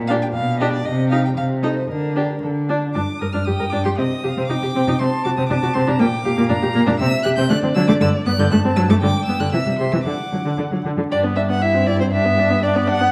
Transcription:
Already playing: A#2
0.07 D4 G4 F5
0.22 G5
0.33 B2 F5
0.60 D4 G4 D#5
0.73 D5
0.85 C3 D#5
1.10 D#4 G4 F5
1.25 G5
1.37 C3 F5
1.63 D#4 A4 D#5
1.77 C5
1.90 D3 A#4
2.16 D4 G4
2.42 D3 A4
2.69 D4
2.94 G2 D4 D6
3.19 G2 A#4 D#6
3.33 G2 D4 F6
3.45 G2 G4 G5 D#6
3.59 G2 A#4
3.70 G2 D4 D6
3.85 G2 G4 C6
3.96 C3 C4 D#5 D#6
4.24 C3 G4 F5
4.37 C3 C4
4.48 C3 D#4 G5 D6
4.62 C3 G4
4.75 C3 C4
4.87 C3 D#4
4.99 C3 C4 A5 C6
5.25 C3 F#4 D6
5.37 C3 C4 D#6
5.50 C3 D4 A5 D6
5.62 C3 F#4
5.74 C3 C4 C6
5.87 C3 D4 A#5
5.99 A#2 A#3 G5 D6
6.25 A#2 G4 F5
6.37 A#2 A#3
6.49 A#2 D4 A#5
6.62 A#2 G4
6.75 A#2 A#3
6.87 A#2 D4
7.00 C3 C4 E5 E6
7.23 C3 G4 F#6
7.37 C3 C4 G6
7.50 D3 A3 D5 F#6
7.63 D3 C4
7.75 D3 F#3 E6
7.88 D3 A3 D6
8.01 G2 D3 E6
8.26 G2 B3 F#6
8.38 G2 D3 G6
8.51 G2 A3 A5 F#6
8.64 G2 C4
8.76 G2 F#3 E6
8.88 G2 A3 D6
9.01 G2 D3 G5 D6
9.26 G2 B3 E6
9.39 G2 D3 F#6
9.52 C3 E3 E5 E6
9.66 C3 G3
9.79 C3 C6
9.92 C3 E3 E6
10.04 D3 F#5 D6
10.32 D3 F#3
10.45 D3
10.57 D3
10.71 D3 F#3
10.84 D3
10.97 D3
11.10 G2 D4 G4 D5
11.23 B3 B4
11.36 D4 G4 E5
11.49 B3 B4 F#5
11.62 E4 G4 E5
11.74 C4 E4
11.86 E4 G4 D5
12.00 C4 E4 C5
12.11 D4 G4 E5
12.24 B3 B4
12.37 D4 G4
12.49 B3 B4
12.62 D4 G4 D5
12.74 B3 B4
12.88 D4 G4 F#5
13.01 B3 B4

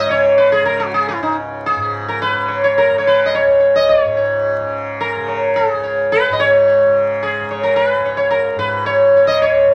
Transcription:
Already playing: C#2 G#2 C#3
0.05 C#3
0.10 C#5
0.38 B4
0.52 G#4
0.61 C#3
0.65 A#4
0.80 F#4
0.94 G#4
1.09 E4
1.19 C#2 D#4
1.66 G#4
1.75 G#2
2.08 A#4
2.22 B4
2.32 C#3
2.48 C#5
2.64 C#5
2.78 A#4
2.89 C#3
2.98 C#5
3.07 B4
3.25 D#5
3.35 C#5
3.46 C#2
3.60 C#5
3.76 D#5
3.89 C#5
4.03 G#2
4.17 C#5
4.60 C#3
5.01 A#4
5.16 C#3
5.28 C#5
5.56 G#4
5.73 C#2
5.83 C#5
6.12 B4
6.28 G#2
6.32 D#5
6.40 C#5
6.68 C#5
6.85 C#3
7.23 G#4
7.41 C#3
7.51 C#5
7.63 A#4
7.76 A#4
7.89 B4
7.99 C#2
8.05 C#5
8.17 C#5
8.31 A#4
8.55 G#2 B4
8.86 C#5
9.12 C#3
9.17 C#5
9.27 D#5
9.42 C#5
9.66 C#3

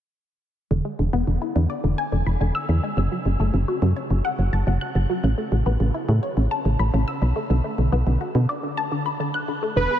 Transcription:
0.71 E1 D3
0.85 G#3
0.99 E1 D3
1.13 E1 B3
1.27 E1 D3
1.42 E4
1.56 E2 D3
1.70 D5
1.84 E1 D3
1.98 G#5
2.12 E1 D3
2.27 E1 B5
2.41 E1 D3
2.55 E6
2.69 E2 D3
2.83 G#3
2.97 F#1 C#3
3.12 F#3
3.26 F#1 C#3
3.40 F#1 A3
3.54 F#1 C#3
3.68 F#4
3.82 F#2 C#3
3.96 C#5
4.10 F#1 C#3
4.25 F#5
4.39 F#1 C#3
4.53 F#1 A5
4.67 F#1 C#3
4.81 F#6
4.95 F#1 C#3
5.10 F#3
5.24 A1 C#3
5.38 A3
5.52 A1 C#3
5.66 A1 B3
5.80 A1 C#3
5.94 E4
6.09 A2 C#3
6.23 C#5
6.37 A1 C#3
6.51 A5
6.65 A1 C#3
6.79 A1 B5
6.94 A1 C#3
7.08 E6
7.22 B1 D3
7.36 A3
7.50 B1 D3
7.64 A3
7.78 B1 D3
7.92 B1 B3
8.07 B1 D3
8.21 F#4
8.35 B2 D3
8.49 D5
8.63 D3
8.77 A5
8.92 D3
9.06 B5
9.20 D3
9.34 F#6
9.48 D3
9.63 A3
9.76 E1 D3 B4
9.91 G#3

